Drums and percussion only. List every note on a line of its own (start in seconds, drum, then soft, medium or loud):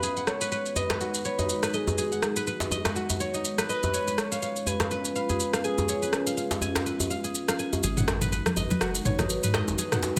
0.03 shaker medium
0.17 shaker soft
0.27 cross-stick medium
0.27 shaker soft
0.41 shaker medium
0.52 shaker soft
0.66 shaker soft
0.76 djembe tone medium
0.76 shaker medium
0.90 cross-stick medium
0.90 djembe slap loud
0.90 shaker soft
1.01 shaker soft
1.14 shaker medium
1.25 shaker soft
1.39 djembe tone medium
1.39 shaker soft
1.49 shaker medium
1.63 cross-stick medium
1.63 shaker medium
1.74 shaker soft
1.87 djembe tone loud
1.87 shaker soft
1.98 shaker medium
2.12 shaker soft
2.22 cross-stick medium
2.22 shaker soft
2.36 shaker medium
2.47 shaker soft
2.60 djembe slap medium
2.60 shaker soft
2.71 djembe tone medium
2.71 shaker medium
2.85 cross-stick medium
2.85 djembe slap loud
2.85 shaker soft
2.96 shaker soft
3.10 djembe tone medium
3.10 shaker medium
3.20 shaker soft
3.34 shaker soft
3.45 shaker medium
3.58 cross-stick medium
3.58 shaker medium
3.69 shaker soft
3.83 djembe tone medium
3.83 shaker soft
3.94 shaker medium
4.08 shaker soft
4.18 cross-stick medium
4.18 shaker soft
4.32 shaker medium
4.42 shaker soft
4.56 shaker soft
4.66 djembe tone medium
4.66 shaker medium
4.80 cross-stick medium
4.80 djembe slap medium
4.80 shaker soft
4.91 shaker soft
5.05 shaker medium
5.16 shaker soft
5.29 djembe tone medium
5.29 shaker soft
5.40 shaker medium
5.53 cross-stick medium
5.53 shaker medium
5.64 shaker soft
5.78 djembe tone medium
5.78 shaker soft
5.89 shaker medium
6.02 shaker soft
6.13 cross-stick medium
6.13 shaker soft
6.27 shaker medium
6.37 shaker soft
6.51 djembe slap medium
6.51 shaker soft
6.61 djembe tone medium
6.61 shaker medium
6.76 cross-stick medium
6.76 djembe slap loud
6.76 shaker soft
6.86 shaker soft
7.00 djembe tone medium
7.00 shaker medium
7.11 shaker soft
7.24 shaker soft
7.35 shaker medium
7.48 cross-stick medium
7.48 shaker medium
7.59 shaker soft
7.73 djembe tone medium
7.73 shaker soft
7.83 muted conga soft
7.83 shaker medium
7.97 mid tom medium
7.97 shaker soft
8.08 cross-stick medium
8.08 djembe slap medium
8.08 shaker soft
8.21 mid tom medium
8.21 muted conga soft
8.21 high conga medium
8.21 shaker medium
8.32 shaker medium
8.46 cross-stick medium
8.46 high conga medium
8.46 shaker soft
8.57 djembe tone medium
8.57 shaker medium
8.70 muted conga soft
8.70 high conga loud
8.70 low conga medium
8.70 shaker soft
8.81 cross-stick medium
8.81 shaker soft
8.95 shaker medium
9.05 mid tom medium
9.05 muted conga soft
9.05 shaker medium
9.19 cross-stick medium
9.19 djembe tone medium
9.19 high conga medium
9.19 low conga loud
9.19 shaker soft
9.30 shaker medium
9.43 muted conga soft
9.43 shaker medium
9.54 cross-stick medium
9.54 djembe slap loud
9.54 shaker soft
9.68 djembe tone medium
9.68 shaker medium
9.78 muted conga soft
9.78 shaker medium
9.92 cross-stick medium
9.92 mid tom medium
9.92 shaker medium
10.03 djembe slap medium
10.03 shaker medium